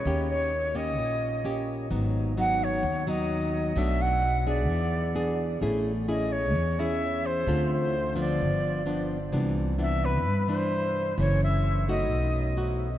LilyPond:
<<
  \new Staff \with { instrumentName = "Flute" } { \time 4/4 \key gis \phrygian \tempo 4 = 129 cis''8 cis''4 dis''2 r8 | r4 fis''8 cis''4 dis''4. | e''8 fis''4 d''2 r8 | r4 dis''8 cis''4 e''4 c''8~ |
c''8 c''4 d''2 r8 | r4 e''8 b'4 c''4. | cis''8 e''4 dis''2 r8 | }
  \new Staff \with { instrumentName = "Nylon-string guitar" } { \time 4/4 \key gis \phrygian << { <ais cis' g'>4 r8 <ais cis' g'>4. <ais cis' g'>4 | <fis b dis'>4 <fis b dis'>4 r8 <fis b dis'>4. | <fis a d'>4 r8 <b d' gis'>4. <b d' gis'>4 | <cis' e' gis'>8 r8 <cis' e' gis'>4 r8 <cis' e' gis'>4. |
<c' f' a'>4 r8 <f b d'>4. <f b d'>8 r8 | <e b d'>4 <e b d'>4 r8 <e d'>4. | <e a cis'>4. <a dis' fis'>4. <a dis' fis'>8 r8 | } \\ { dis2 ais,2 | gis,2 dis2 | b,2 e2 | a2 e2 |
d2 g,2 | c2 g,2 | fis,2 b,2 | } >> }
  \new Staff \with { instrumentName = "Upright bass" } { \clef bass \time 4/4 \key gis \phrygian dis,2 ais,,2 | gis,,2 dis,2 | b,,2 e,2 | a,,2 e,2 |
d,2 g,,2 | c,2 g,2 | fis,,2 b,,2 | }
>>